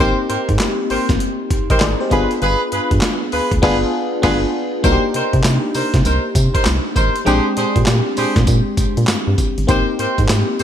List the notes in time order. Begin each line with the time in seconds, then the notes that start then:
0.00 G#1 A#3 C4 D#4 G4 A#4 C5
0.29 G#2 G4 A#4 C5, closed hi-hat
0.49 G#2, kick, closed hi-hat
0.59 snare, clap, closed hi-hat
0.90 G#1 G4 A#4 C5, open hi-hat
1.09 G#1, kick, snare, closed hi-hat
1.20 closed hi-hat
1.51 G#1, kick, closed hi-hat
1.70 G#1 G4 A#4 C5 D#5, kick, closed hi-hat
1.80 G#1 G#4 D5, snare, clap, closed hi-hat
2.00 G4 C5
2.10 G1 B3 D4 F4 G#4 B4, kick, closed hi-hat
2.31 closed hi-hat
2.41 G1 F4 G#4 B4, closed hi-hat
2.72 G2 F4 G#4 B4, closed hi-hat
2.91 G2, kick, closed hi-hat
3.01 snare, clap, closed hi-hat
3.32 D2 F4 G#4 B4, open hi-hat
3.52 D2, kick, closed hi-hat
3.62 G1 B3 D4 F4 G#4 B4, kick, snare, crash
4.22 G1 B3 D4 F4 G#4 B4, kick, snare, crash
4.83 C2 A#3 D4 D#4 F#4 A#4 C5, kick, closed hi-hat, tambourine
4.92 G4
5.14 C3 D#4 A#4 C5, closed hi-hat
5.33 C3, kick, closed hi-hat
5.44 C3, snare, clap, closed hi-hat, tambourine
5.74 C3 D#4 A#4 C5, open hi-hat, tambourine
5.94 C3, kick, snare, closed hi-hat
6.05 C2 D#4 A#4 C5, closed hi-hat, tambourine
6.35 C3, kick, closed hi-hat, tambourine
6.54 D#4 A#4 C5, kick, closed hi-hat
6.65 C2, snare, clap, closed hi-hat, tambourine
6.96 G#1 D#4 A#4 C5, kick, closed hi-hat, tambourine
7.16 closed hi-hat
7.25 A#1 G#3 C4 D4 G4 G#4 C5, closed hi-hat, tambourine
7.57 A#2 D4 G4 G#4 C5, closed hi-hat
7.76 A#2, kick, closed hi-hat
7.86 A#2, snare, clap, closed hi-hat, tambourine
8.17 A#2 D4 G4 G#4 C5, open hi-hat, tambourine
8.36 A#2, kick, snare, closed hi-hat
8.47 A#2, kick, closed hi-hat, tambourine
8.77 A#2, kick, closed hi-hat, tambourine
8.97 A#2, closed hi-hat
9.07 G2, snare, clap, closed hi-hat, tambourine
9.27 G2
9.38 kick, closed hi-hat, tambourine
9.58 G1, closed hi-hat
9.67 G#1 A#3 C4 D#4 G4 A#4 C5, kick, closed hi-hat, tambourine
9.99 G#2 G4 A#4 C5, closed hi-hat
10.18 G#2, kick, closed hi-hat
10.29 G#2, snare, clap, closed hi-hat, tambourine
10.59 G#2 G4 A#4 C5, open hi-hat, tambourine